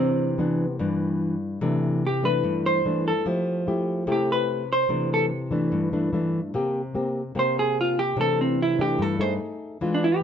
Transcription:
Already playing: nylon-string guitar C3 E3, hollow-body jazz guitar C4
0.00 nylon-string guitar D4
0.38 nylon-string guitar E3 B3 D4
0.73 hollow-body jazz guitar A#3
0.79 nylon-string guitar G2 E3 D4
1.61 nylon-string guitar C3 E3 A3 D4
2.07 hollow-body jazz guitar G4
2.23 nylon-string guitar E3 A3 D4, hollow-body jazz guitar B4
2.44 nylon-string guitar G2
2.66 hollow-body jazz guitar C5
2.85 nylon-string guitar E3 A3 D4
3.08 hollow-body jazz guitar A4
3.26 nylon-string guitar F3 A3 E4 G4
3.67 nylon-string guitar A3 E4 G4
4.07 nylon-string guitar C3 A3 E4 G4
4.12 hollow-body jazz guitar G4
4.32 hollow-body jazz guitar B4
4.73 hollow-body jazz guitar C5
4.89 nylon-string guitar C3 E3 A3 D4
5.14 hollow-body jazz guitar A4
5.51 nylon-string guitar E3 A3 D4
5.72 nylon-string guitar G2
5.92 nylon-string guitar E3 A3 D4
6.13 nylon-string guitar E3 A3 D4
6.54 nylon-string guitar C3 A#3 C4 G4
6.94 nylon-string guitar A#3 C4 G4
7.35 nylon-string guitar C3 A#3 C4 G4
7.39 hollow-body jazz guitar C5
7.59 hollow-body jazz guitar G#4
7.81 hollow-body jazz guitar F4
7.99 hollow-body jazz guitar G4
8.17 nylon-string guitar C3 E3 A3 D4
8.21 hollow-body jazz guitar A4
8.41 hollow-body jazz guitar C4
8.62 hollow-body jazz guitar E4
8.78 nylon-string guitar E3 A3 D4, hollow-body jazz guitar G4
8.99 nylon-string guitar G2, hollow-body jazz guitar A4
9.19 nylon-string guitar A3 D#4 G#4, hollow-body jazz guitar C5
9.81 nylon-string guitar E3 G#3 D4 F4
9.94 hollow-body jazz guitar D4
10.04 hollow-body jazz guitar E4
10.16 hollow-body jazz guitar G4

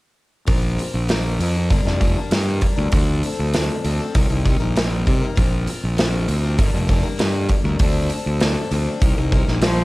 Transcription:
0.47 fingered electric bass A#1, steel-string acoustic guitar A#3 C4 F4 A#4, kick, open hi-hat
0.77 steel-string acoustic guitar A#3 C4 F4 A#4, open hi-hat
0.94 fingered electric bass A#1
1.08 steel-string acoustic guitar A#3 C4 F4 A#4, snare, open hi-hat
1.39 fingered electric bass F2, steel-string acoustic guitar A#3 C4 F4 A#4, open hi-hat
1.54 steel-string acoustic guitar C4 F4 A#4
1.70 fingered electric bass G1, steel-string acoustic guitar G2 D3 G3 A#3 D4 A#4, kick, open hi-hat
1.85 fingered electric bass F1, steel-string acoustic guitar G3 A#3 D4 A#4, snare
2.01 steel-string acoustic guitar G3 A#3 D4 A#4, kick, open hi-hat
2.16 steel-string acoustic guitar G3 A#3 D4 A#4
2.31 steel-string acoustic guitar G2 D3 G3 A#3 D4 A#4, fingered electric bass G2, snare, open hi-hat
2.61 steel-string acoustic guitar G3 A#3 D4 A#4, kick, open hi-hat
2.76 fingered electric bass D2, steel-string acoustic guitar G3 A#3 D4 A#4
2.92 fingered electric bass D2, steel-string acoustic guitar D3 F3 C4 D4 A4, kick, open hi-hat
3.23 steel-string acoustic guitar F3 C4 D4 A4, open hi-hat
3.39 fingered electric bass D2
3.53 steel-string acoustic guitar D3 F3 C4 D4 A4, snare, open hi-hat
3.84 fingered electric bass D2, steel-string acoustic guitar F3 C4 D4 A4, open hi-hat
4.00 steel-string acoustic guitar C4 D4 A4
4.14 fingered electric bass C2, steel-string acoustic guitar C3 G3 A#3 D#4 A#4, kick, open hi-hat
4.29 fingered electric bass C2, steel-string acoustic guitar A#3 D#4 A#4
4.45 steel-string acoustic guitar G3 A#3 D#4 A#4, kick, open hi-hat
4.60 fingered electric bass A#1, steel-string acoustic guitar A#3 D#4 A#4
4.75 steel-string acoustic guitar C3 G3 A#3 D#4 A#4, snare, open hi-hat
5.06 fingered electric bass C3, steel-string acoustic guitar G3 A#3 D#4 A#4, kick, open hi-hat
5.21 steel-string acoustic guitar A#3 D#4 A#4
5.35 fingered electric bass A#1, steel-string acoustic guitar A#3 C4 F4 A#4, kick, open hi-hat
5.66 steel-string acoustic guitar A#3 C4 F4 A#4, open hi-hat
5.83 fingered electric bass A#1
5.97 steel-string acoustic guitar A#3 C4 F4 A#4, snare, open hi-hat
6.28 fingered electric bass D2, steel-string acoustic guitar A#3 C4 F4 A#4, open hi-hat
6.43 steel-string acoustic guitar C4 F4 A#4
6.58 fingered electric bass G1, steel-string acoustic guitar G2 D3 G3 A#3 D4 A#4, kick, open hi-hat
6.73 fingered electric bass F1, steel-string acoustic guitar G3 A#3 D4 A#4
6.88 steel-string acoustic guitar G3 A#3 D4 A#4, kick, open hi-hat
7.03 steel-string acoustic guitar G3 A#3 D4 A#4
7.18 steel-string acoustic guitar G2 D3 G3 A#3 D4 A#4, fingered electric bass G2, snare, open hi-hat
7.49 steel-string acoustic guitar G3 A#3 D4 A#4, kick, open hi-hat
7.64 fingered electric bass D2, steel-string acoustic guitar A#3 D4 A#4
7.69 steel-string acoustic guitar G3
7.79 fingered electric bass D2, steel-string acoustic guitar D3 F3 C4 D4 A4, kick, open hi-hat
8.10 steel-string acoustic guitar F3 C4 D4 A4, open hi-hat
8.26 fingered electric bass D2
8.40 steel-string acoustic guitar D3 F3 C4 D4 A4, snare, open hi-hat
8.71 fingered electric bass D2, steel-string acoustic guitar F3 C4 D4 A4, open hi-hat
8.87 steel-string acoustic guitar C4 D4 A4
9.00 fingered electric bass C2, steel-string acoustic guitar C3 G3 A#3 D#4 A#4, kick, open hi-hat
9.17 fingered electric bass C2, steel-string acoustic guitar A#3 D#4 A#4
9.32 steel-string acoustic guitar G3 A#3 D#4 A#4, kick, open hi-hat
9.47 fingered electric bass A#1, steel-string acoustic guitar A#3 D#4 A#4, snare
9.62 steel-string acoustic guitar C3 G3 A#3, cello F3, snare, open hi-hat
9.66 steel-string acoustic guitar D#4 A#4

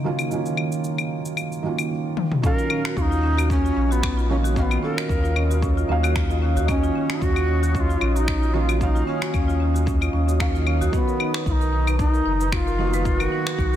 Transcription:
Already playing: ambient pad C#3 D#3 A#3 D#4, felt piano D#3 F#3 A#3 C#4 F4
0.04 felt piano D#3 F#3 A#3 C#4 F4
0.19 cabasa, claves
0.30 felt piano D#3 F#3 A#3 C#4 F4, cabasa
0.46 cabasa
0.57 claves
0.72 cabasa
0.84 cabasa
0.98 cabasa, claves
1.25 cabasa
1.37 cabasa, claves
1.52 cabasa
1.63 felt piano D#3 F#3 A#3 C#4 F4
1.78 cabasa, claves
2.17 high tom
2.32 mid tom
2.42 felt piano A#2 D#3 F#3 C#4, marimba C#4, native american-style wooden flute A4, ambient pad C#5 D#5 D#6, kick, cabasa
2.46 felt piano F5
2.55 marimba F4, native american-style wooden flute A#4, cabasa
2.70 marimba C#4, claves
2.85 marimba F#4, finger snap, cabasa
2.97 sub bass D#2, marimba C#4, native american-style wooden flute F4, kick, cabasa
3.02 native american-style wooden flute D#4
3.11 marimba F4, cabasa
3.23 marimba C#4
3.37 marimba F#4, cabasa, claves
3.50 marimba C#4, native american-style wooden flute C#4, kick, cabasa
3.65 marimba F4, cabasa
3.76 sub bass A#1, marimba C#4
3.91 native american-style wooden flute B3, marimba F#4, cabasa
4.03 marimba C#4, finger snap, kick, cabasa, claves
4.17 marimba F4, cabasa
4.29 felt piano D#3 F#3 A#3 C#4 F4, marimba C#4, native american-style wooden flute C#4
4.44 marimba F#4, cabasa
4.55 felt piano D#3 F#3 A#3 C#4, marimba C#4, native american-style wooden flute C#4, kick, cabasa
4.59 native american-style wooden flute B3, felt piano F5
4.71 marimba F4, cabasa, claves
4.83 marimba C#4, native american-style wooden flute A4
4.97 marimba F#4, native american-style wooden flute A#4, finger snap, cabasa
5.09 sub bass D#2, marimba C#4, kick, cabasa
5.24 marimba F4, cabasa
5.36 marimba C#4, claves
5.50 marimba F#4, cabasa
5.62 marimba C#4, kick, cabasa
5.77 marimba F4, cabasa
5.88 sub bass D#2, felt piano D#3 F#3 A#3 C#4 F5, marimba C#4
6.03 marimba F#4, cabasa, claves
6.15 marimba C#4, finger snap, kick, cabasa
6.30 marimba F4, cabasa
6.42 marimba C#4
6.56 marimba F#4, udu, cabasa
6.67 felt piano D#3 F#3 A#3 C#4 D#5, marimba C#4, native american-style wooden flute C#4, kick, cabasa, claves
6.83 marimba F4, cabasa
6.95 marimba C#4
7.10 marimba F#4, finger snap, cabasa
7.21 sub bass D#2, marimba C#4, native american-style wooden flute F#4, kick, cabasa
7.36 marimba F4, cabasa, claves
7.48 marimba C#4
7.63 marimba F#4, cabasa
7.75 marimba C#4, native american-style wooden flute F#4, kick, cabasa
7.80 native american-style wooden flute F4
7.89 marimba F4, cabasa
8.01 sub bass A#1, marimba C#4, claves
8.16 native american-style wooden flute D#4, marimba F#4, cabasa
8.28 marimba C#4, finger snap, kick, cabasa
8.42 marimba F4, cabasa
8.53 felt piano D#3 F#3 A#3 C#4 F4, marimba C#4, native american-style wooden flute F#4
8.58 native american-style wooden flute F4
8.69 marimba F#4, cabasa, claves
8.79 felt piano D#3 F#3 A#3 C#4, marimba C#4, native american-style wooden flute F4, kick, cabasa
8.83 native american-style wooden flute D#4, felt piano F5
8.95 marimba F4, cabasa
9.07 native american-style wooden flute C#4, marimba C#4
9.22 marimba F#4, finger snap, cabasa
9.33 sub bass D#2, marimba C#4, kick, cabasa, claves
9.48 marimba F4, cabasa
9.60 marimba C#4
9.75 marimba F#4, cabasa
9.86 marimba C#4, kick, cabasa
10.01 marimba F4, cabasa, claves
10.13 sub bass D#2, marimba C#4
10.28 marimba F#4, cabasa
10.40 felt piano D#3 F#3 A#3 C#4 F5, marimba C#4, finger snap, kick, cabasa
10.55 marimba F4, cabasa
10.67 marimba C#4, claves
10.81 marimba F#4, udu, cabasa
10.91 felt piano D#3 F#3 B3, native american-style wooden flute B3, ambient pad A#5, kick, cabasa
10.95 felt piano F#4
11.08 marimba A#4, cabasa
11.20 marimba D#4, claves
11.34 marimba B4, finger snap, cabasa
11.46 sub bass B1, marimba D#4, native american-style wooden flute F4, kick, cabasa
11.52 native american-style wooden flute D#4
11.61 marimba A#4, cabasa
11.73 marimba D#4
11.87 marimba B4, cabasa, claves
11.99 marimba D#4, native american-style wooden flute D#4, kick, cabasa
12.14 marimba A#4, cabasa
12.26 sub bass F#1, marimba D#4
12.40 marimba B4, cabasa
12.52 marimba D#4, native american-style wooden flute F4 F#4, finger snap, kick, cabasa, claves
12.67 marimba A#4, cabasa
12.78 felt piano D#3 F#3 A#3 B3 F#4, marimba D#4
12.93 marimba B4, cabasa
13.04 felt piano D#3 F#3 B3, marimba D#4, native american-style wooden flute F4, kick, cabasa
13.08 felt piano F#4
13.20 native american-style wooden flute F#4, marimba A#4, cabasa, claves
13.32 marimba D#4
13.46 marimba B4, finger snap, cabasa
13.58 sub bass B1, marimba D#4, kick, cabasa

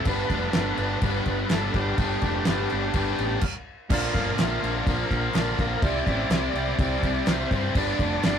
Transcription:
0.05 fingered electric bass G1, overdriven electric guitar G2 D3 G3 B3 D4, upright piano D4 G4 B4, tonewheel organ B4, kick, crash
0.29 fingered electric bass F1, overdriven electric guitar G3 B3 D4, upright piano D4 G4, kick, crash
0.53 fingered electric bass G1, overdriven electric guitar G2 D3 G3 B3 D4, upright piano D4 G4 A4, tonewheel organ B4, snare, clap, crash
0.77 fingered electric bass G1, overdriven electric guitar G3 B3 D4, crash
1.01 fingered electric bass G1, upright piano D4 G4 B4, tonewheel organ B4, kick, crash
1.26 fingered electric bass G1, kick, crash
1.50 fingered electric bass G1, overdriven electric guitar D3 G3 B3 D4, upright piano D4 G4 B4, tonewheel organ A4, snare, clap, crash
1.74 fingered electric bass G1, overdriven electric guitar G2 D3 G3 B3 D4, upright piano D4 G4 B4, tonewheel organ G4, kick, crash
1.98 fingered electric bass G1, overdriven electric guitar G2 D3 G3 B3 D4, kick, crash
2.21 fingered electric bass F1, overdriven electric guitar G3 B3 D4, upright piano D4 G4 B4, kick, crash
2.45 fingered electric bass G1, overdriven electric guitar G2 D3 G3 B3 D4, upright piano D4 G4 B4, snare, clap, crash
2.70 fingered electric bass G1, overdriven electric guitar G3 B3 D4, crash
2.94 fingered electric bass G1, upright piano D4 G4 B4, kick, crash
3.18 fingered electric bass A1, crash
3.41 kick, crash
3.90 fingered electric bass A#1, overdriven electric guitar A#2 D3 F3 A#3 F4, upright piano D4 F4 A#4 D5, tonewheel organ A#4, kick, crash
4.14 fingered electric bass G1, overdriven electric guitar F3 A#3 F4, upright piano D4 F4 A#4 D5, kick, crash
4.38 fingered electric bass A#1, overdriven electric guitar A#2 D3 F3 A#3 F4, upright piano D4 F4 A#4 E5, snare, clap, crash
4.61 fingered electric bass A#1, overdriven electric guitar F3 A#3 F4, crash
4.81 tonewheel organ D5
4.86 fingered electric bass A#1, upright piano D4 F4 A#4 D5, tonewheel organ A#4, kick, crash
5.11 fingered electric bass A#1, kick, crash
5.34 fingered electric bass A#1, overdriven electric guitar D3 F3 A#3 F4, upright piano D4 F4 A#4 D5, snare, clap, crash
5.58 fingered electric bass A#1, overdriven electric guitar F3 A#3 F4, kick, crash
5.82 fingered electric bass C2, overdriven electric guitar C3 G3 C4 E4, upright piano E4 G4 C5 D5, tonewheel organ D5, kick, crash
6.06 fingered electric bass A1, overdriven electric guitar G3 C4 E4, upright piano E4 G4 C5 D5, kick, crash
6.30 fingered electric bass C2, overdriven electric guitar C3 G3 C4, upright piano E4 G4 C5 D5, snare, clap, crash
6.34 overdriven electric guitar E4
6.53 fingered electric bass C2, overdriven electric guitar C4 E4, crash
6.57 overdriven electric guitar G3
6.78 fingered electric bass C2, upright piano E4 G4 C5 D5, kick, crash
6.82 tonewheel organ D5
7.03 fingered electric bass C2, kick, crash
7.26 fingered electric bass C2, overdriven electric guitar C3 G3 C4 E4, upright piano E4 G4 C5 D5, snare, clap, crash
7.30 tonewheel organ C5
7.51 fingered electric bass G2, overdriven electric guitar G3 C4 E4, kick, crash
7.75 fingered electric bass G1, overdriven electric guitar G2 D3 G3 B3 D4, upright piano D4 G4 B4 D5, tonewheel organ D5, kick, crash
7.99 fingered electric bass F1, overdriven electric guitar G3 B3 D4, upright piano D4 G4 B4 D5, kick, crash
8.24 fingered electric bass G1, overdriven electric guitar G2 D3 G3 B3 D4, upright piano D4 G4 B4 D5, tonewheel organ D5, snare, clap, crash

